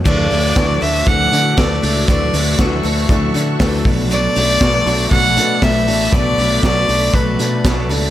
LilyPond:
<<
  \new Staff \with { instrumentName = "String machine" } { \time 4/4 \key d \major \tempo 4 = 119 << { d'''1 | cis'''2.~ cis'''8 b''8~ | b''1~ | b''1 | } \\ { <fis' e''>1~ | <fis' e''>2.~ <fis' e''>8 <a' d''>8~ | <a' d''>1~ | <a' d''>1 | } >> }
  \new Staff \with { instrumentName = "Violin" } { \time 4/4 \key d \major d''4. e''8 fis''4 d''4 | d''4 r2. | d''2 fis''4 e''4 | d''4 d''4 b'4. r8 | }
  \new Staff \with { instrumentName = "Steel-string acoustic guitar" } { \time 4/4 \key d \major <d e a d' fis'>8 <a d' fis'>8 <d e a d' fis'>8 <a d' fis'>8 <e a d' fis'>8 <a d' fis'>8 <d e a d' fis'>8 <a d' fis'>8 | <d e a d' fis'>8 <a d' fis'>8 <d e a d' fis'>8 <a d' fis'>8 <e a d' fis'>8 <a d' fis'>8 <d e a d' fis'>8 <a d' fis'>8 | <b, fis a d' fis'>8 <a d' fis'>8 <b, fis a d' fis'>8 <a d' fis'>8 <fis a d' fis'>8 <a d' fis'>8 <b, fis a d' fis'>8 <a d' fis'>8 | <b, fis a d' fis'>8 <a d' fis'>8 <b, fis a d' fis'>8 <a d' fis'>8 <fis a d' fis'>8 <a d' fis'>8 <b, fis a d' fis'>8 <a d' fis'>8 | }
  \new Staff \with { instrumentName = "Clean electric guitar" } { \time 4/4 \key d \major d8 a8 fis'8 d'8 a8 d'8 a8 d'8 | d8 a8 fis'8 d'8 a8 d'8 a8 b,8 | b,8 a8 fis'8 d'8 a8 d'8 a8 d'8 | b,8 a8 fis'8 d'8 a8 d'8 a8 d'8 | }
  \new Staff \with { instrumentName = "Fingered electric bass" } { \clef bass \time 4/4 \key d \major d,8 d,8 d,8 d,8 d,8 d8 d,8 cis,8 | d,8 d,8 d,8 d,8 d,8 d8 d,8 b,,8~ | b,,8 b,,8 b,,8 b,,8 b,,8 b,8 b,,8 a,,8 | b,,8 b,,8 b,,8 b,,8 b,,8 b,8 b,,8 cis,8 | }
  \new DrumStaff \with { instrumentName = "Drums" } \drummode { \time 4/4 <cymc bd>8 <hho hhp>8 <hho hhp bd sn>8 <hho hhp>8 <hho hhp bd>8 <hho hhp>8 <hho hhp bd sn>8 <hho hhp>8 | <hho hhp bd>8 <hho hhp>8 <hho hhp bd sn>8 <hho hhp>8 <hho hhp bd>8 <hho hhp>8 <hho hhp bd sn>8 <hho hhp bd>8 | <hho hhp>8 <hho hhp>8 <hho hhp bd sn>8 <hho hhp>8 <hho hhp bd>8 <hho hhp>8 <hho hhp bd sn>8 <hho hhp>8 | <hho hhp bd>8 <hho hhp>8 <hho hhp bd sn>8 <hho hhp>8 <hho hhp bd>8 <hho hhp>8 <hho hhp bd sn>8 <hho hhp>8 | }
>>